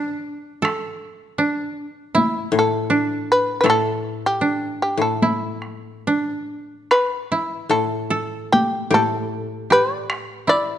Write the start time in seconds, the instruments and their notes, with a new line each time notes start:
Already playing: koto D4 E4
0.62 koto A4, taiko rim
1.38 koto D4
2.15 koto E4, taiko high
2.52 koto A2
2.59 shamisen A4
2.90 koto D4
3.32 shamisen B4
3.61 koto A2 A4, shamisen B4
3.66 shamisen A4, taiko rim
4.26 shamisen G4
4.41 koto D4
4.82 shamisen G4
4.97 koto A2
5.02 shamisen A4
5.22 koto E4, taiko high
5.62 taiko rim
6.07 koto D4
6.91 shamisen B4, taiko rim
7.32 koto E4
7.70 koto A2, shamisen A4
8.10 koto A4
8.52 shamisen G4, taiko high
8.90 koto A2 G4, shamisen A4, taiko high
9.70 koto G4, shamisen B4
9.95 shamisen D5
10.10 taiko rim
10.47 koto E4, shamisen D5